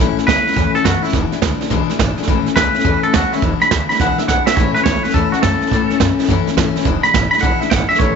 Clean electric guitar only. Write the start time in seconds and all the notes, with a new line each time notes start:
0.27 B4
0.75 A4
0.85 F#4
1.03 E4
2.56 B4
3.03 A4
3.14 F#4
3.33 E4
3.62 B5
3.89 B5
4.01 F#5
4.19 E5
4.28 F#5
4.46 E5
4.55 C#5
4.74 B4
4.84 C#5
5.03 B4
5.14 A4
5.32 F#4
5.42 A4
7.03 B5
7.31 B5
7.41 F#5
7.60 E5
7.70 F#5
7.89 E5
7.99 C#5